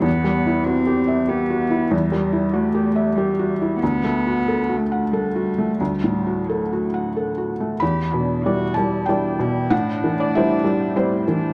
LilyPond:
<<
  \new Staff \with { instrumentName = "Felt piano" } { \time 3/4 \key e \minor \tempo 4 = 95 << { r2. | r2. | r2. | r2. |
b''4. a''8 g''4 | fis''8. d''16 e''4. r8 | } \\ { \tuplet 3/2 { e,8 g8 e'8 fis'8 g'8 e''8 g'8 fis'8 e'8 } | \tuplet 3/2 { e,8 g8 e'8 fis'8 g'8 e''8 g'8 fis'8 e'8 } | \tuplet 3/2 { d,8 a8 fis'8 a'8 fis'8 fis''8 a'8 fis'8 a8 } | \tuplet 3/2 { d,8 a,8 fis'8 a'8 fis'8 fis''8 a'8 fis'8 a8 } |
e,8 b,8 <g e' d''>8 g8 <g e' d''>8 b,8 | a,8 e8 <g e' c''>8 g8 <g e' c''>8 e8 | } >> }
  \new Staff \with { instrumentName = "Cello" } { \time 3/4 \key e \minor b4 c'4 b4 | g4 a4 g4 | b4. a8 g4 | g4 fis4. r8 |
g'8 d'8 fis'8 e'8 d'8 e'8 | d'2 c'8 d'8 | }
>>